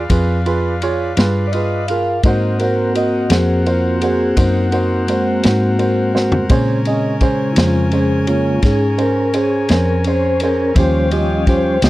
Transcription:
Already playing: B4 D5 F5
0.10 F2 F4 G#4 B4, kick, ride
0.46 F4 G#4 B4, ride
0.82 F4 G#4 C#5, ride
1.17 G2 F4 G#4 B4, snare, ride
1.47 D5
1.52 F4 G#4 B4 D#5, ride
1.88 F4 G#4 A#4 F5, ride
2.23 G#2 A#3 C4 F#4 A#4 C5 D#5 F#5, kick, ride
2.59 F#4 A#4 C5, ride
2.95 F#4 A#4 D#5, ride
3.30 F2 F#4 G#4 A#4 C5, snare, ride
3.66 F4 F#4 A#4 C5, ride
4.01 F#4 G#4 A#4 C5, ride
4.37 F#2 D#4 F#4 A#4 C5, kick, ride
4.71 D#4 F#4 A#4 C5, ride
5.07 G#3 C4 F#4 A#4 C5, ride
5.43 G#2 F#4 A#4 C5, snare, ride
5.79 F#4 A#4 C5, ride
6.14 F#4 A#4 C5, snare
6.32 floor tom
6.49 A#2 C#3 G#3 C#4 G#4 C5 C#5 G#5, kick, ride
6.85 C#4 G#4 D#5, ride
7.21 C#4 G#4 C5, kick, ride
7.52 E4, ride
7.57 F2 C#4 F4 G#4 C5, snare
7.91 C#4 G#4 C5, ride
8.27 C#3 G#3 A#3 C#4 F4 G#4 C#5, ride
8.62 G#2 C#4 G#4 C#5, kick, snare, ride
8.98 C#4 G#4 A#4 C5, ride
9.33 C#4 G#4 C5, ride
9.69 F2 C#4 G#4 A#4 C5, snare, ride
10.04 C#4 G#4 C5, ride
10.40 C#4 G#4 A#4 C5, ride
10.75 D#2 F3 G3 C#4 F4 G4 C5 F5 G5, kick, ride
11.11 C#4 F4 G4 D#5, ride
11.47 C#4 F4 G4 C5, kick, ride
11.82 C#2 C#4 F4 G4 D#5, snare, ride

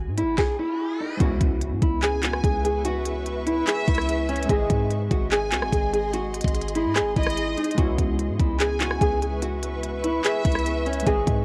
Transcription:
Already playing: F#4, riser
0.07 G#2
0.17 E4, closed hi-hat
0.23 G#1
0.38 G#4, kick, snare
0.59 E4
1.00 D#4
1.17 C#2 G#3 B3 F#4 B4 E5 C#6, kick, closed hi-hat, impact
1.22 C#4 E4
1.41 C#2, kick, closed hi-hat
1.61 closed hi-hat
1.72 G#2
1.82 C#2 E4, kick, closed hi-hat
2.02 G#4 G#5, clap, closed hi-hat
2.23 F#4, clap, closed hi-hat
2.33 cross-stick
2.44 C#2 G#4, kick, closed hi-hat
2.64 G#4, closed hi-hat
2.85 F#4, closed hi-hat
3.05 closed hi-hat
3.26 closed hi-hat
3.47 E4, closed hi-hat
3.67 G#4 E5, clap, closed hi-hat
3.88 C#2 E4, kick, closed hi-hat
3.95 cross-stick, closed hi-hat
4.01 closed hi-hat
4.09 closed hi-hat
4.29 C#4, closed hi-hat
4.36 closed hi-hat
4.43 G#3, closed hi-hat
4.48 G#1 C4 G#4 D#5 C6, kick, closed hi-hat
4.53 G#4
4.70 G#2, kick, closed hi-hat
4.90 closed hi-hat
5.11 G#1 F#4, kick, closed hi-hat
5.31 G#4 G#5, clap, closed hi-hat
5.52 C2 F#4, clap, closed hi-hat
5.62 G#1, cross-stick
5.72 G#1 G#4, kick, closed hi-hat
5.93 G#4, closed hi-hat
6.13 F#4, closed hi-hat
6.34 closed hi-hat
6.41 G#1, kick, closed hi-hat
6.48 closed hi-hat
6.55 closed hi-hat
6.61 closed hi-hat
6.68 closed hi-hat
6.75 E4, closed hi-hat
6.85 G#2
6.96 G#4, cross-stick, clap, closed hi-hat
7.01 G#1
7.16 G#1 E4 D#5, kick, closed hi-hat
7.23 cross-stick, closed hi-hat
7.30 closed hi-hat
7.37 closed hi-hat
7.57 D#4, closed hi-hat
7.64 closed hi-hat
7.71 G#3, closed hi-hat
7.77 C#2 B3 C#4 F#4 B4 E5 C#6, kick, closed hi-hat
7.82 E4
7.98 C#2, kick, closed hi-hat
8.19 closed hi-hat
8.29 G#2
8.39 C#2 E4, kick, closed hi-hat
8.60 G#4 G#5, clap, closed hi-hat
8.80 F#4, clap, closed hi-hat
8.91 cross-stick
9.01 C#2 G#4, kick, closed hi-hat
9.22 G#4, closed hi-hat
9.42 F#4, closed hi-hat
9.63 closed hi-hat
9.83 closed hi-hat
10.04 E4, closed hi-hat
10.24 G#4 E5, clap, closed hi-hat
10.45 C#2 E4, kick, closed hi-hat
10.52 cross-stick, closed hi-hat
10.59 closed hi-hat
10.66 closed hi-hat
10.86 C#4, closed hi-hat
10.93 closed hi-hat
11.00 G#3, closed hi-hat
11.05 G#1 C4 G#4 D#5 C6, kick, closed hi-hat
11.10 G#4
11.27 G#2, kick, closed hi-hat

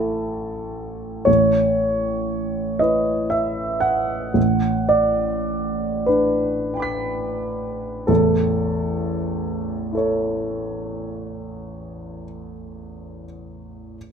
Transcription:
Already playing: A1 E4 A4 A5
1.25 A1 C#5
2.79 E4 B4 D#5
3.30 E5
3.80 F#5
4.34 A1
4.89 D5
6.06 D4 B4
6.74 G5 B5
6.80 D6 B6
8.07 A1 E2 A4
9.92 E4 A4
9.97 C#5

